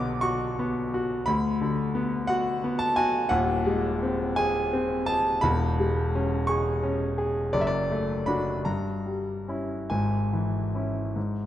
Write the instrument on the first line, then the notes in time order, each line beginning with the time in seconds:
grand piano
Already playing: B1 D3 B3 F#5 D6
0.21 F#4 C#6
0.59 B3
0.94 F#4
1.26 D2 B5
1.61 D3
1.95 B3
2.27 F#4 F#5
2.64 B3
2.79 A5
2.96 F#4 G#5
3.29 D#1 D#2 F#5
3.66 G#3
4.03 C4
4.36 G#4 G#5
4.73 C4
5.06 G#4 A5
5.41 E1 E2 B5
5.80 G#3
6.15 C#4
6.47 G#4 C#6
6.83 C#4
7.18 G#4
7.53 F#1 F#2 D5
7.61 E5
7.67 D5
7.91 A3
8.26 D4 F#4 B5
8.65 G2 A#5
9.06 G3
9.48 C#4 E4
9.90 G#1 G#2 G#5
10.33 E3
10.75 C#4 E4
11.16 G#2